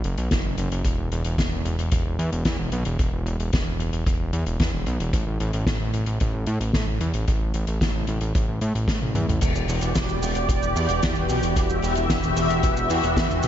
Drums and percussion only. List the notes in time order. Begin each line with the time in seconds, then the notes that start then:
0.04 closed hi-hat
0.18 closed hi-hat
0.31 kick, snare, closed hi-hat
0.58 closed hi-hat
0.72 closed hi-hat
0.85 kick, closed hi-hat
1.12 closed hi-hat
1.25 closed hi-hat
1.38 kick, snare, closed hi-hat
1.66 closed hi-hat
1.79 closed hi-hat
1.92 kick, closed hi-hat
2.19 closed hi-hat
2.33 closed hi-hat
2.45 kick, snare, closed hi-hat
2.72 closed hi-hat
2.85 closed hi-hat
2.99 kick, closed hi-hat
3.26 closed hi-hat
3.40 closed hi-hat
3.53 kick, snare, closed hi-hat
3.80 closed hi-hat
3.93 closed hi-hat
4.06 kick, closed hi-hat
4.33 closed hi-hat
4.46 closed hi-hat
4.60 kick, snare, closed hi-hat
4.86 closed hi-hat
5.00 closed hi-hat
5.13 kick, closed hi-hat
5.40 closed hi-hat
5.53 closed hi-hat
5.67 kick, snare, closed hi-hat
5.94 closed hi-hat
6.06 closed hi-hat
6.20 kick, closed hi-hat
6.46 closed hi-hat
6.61 closed hi-hat
6.73 kick, snare, closed hi-hat
7.01 closed hi-hat
7.14 closed hi-hat
7.28 kick, closed hi-hat
7.54 closed hi-hat
7.67 closed hi-hat
7.81 kick, snare, closed hi-hat
8.07 closed hi-hat
8.21 closed hi-hat
8.35 kick, closed hi-hat
8.61 closed hi-hat
8.75 closed hi-hat
8.88 kick, snare, closed hi-hat
9.01 high tom
9.14 closed hi-hat, mid tom
9.29 closed hi-hat, mid tom
9.41 kick, closed hi-hat, crash, shaker
9.55 shaker
9.68 open hi-hat, shaker
9.81 closed hi-hat, shaker
9.95 kick, snare, closed hi-hat, shaker
10.09 shaker
10.22 open hi-hat, shaker
10.35 closed hi-hat, shaker
10.49 kick, closed hi-hat, shaker
10.63 shaker
10.76 open hi-hat, shaker
10.89 closed hi-hat, shaker
11.03 kick, snare, closed hi-hat, shaker
11.15 shaker
11.29 open hi-hat, shaker
11.43 closed hi-hat, shaker
11.56 kick, closed hi-hat, shaker
11.70 shaker
11.82 open hi-hat, shaker
11.96 closed hi-hat, shaker
12.10 kick, snare, closed hi-hat, shaker
12.23 shaker
12.36 open hi-hat, shaker
12.50 closed hi-hat, shaker
12.63 kick, closed hi-hat, shaker
12.77 shaker
12.90 open hi-hat, shaker
13.03 closed hi-hat, shaker
13.17 kick, snare, closed hi-hat, shaker
13.31 shaker
13.43 open hi-hat, shaker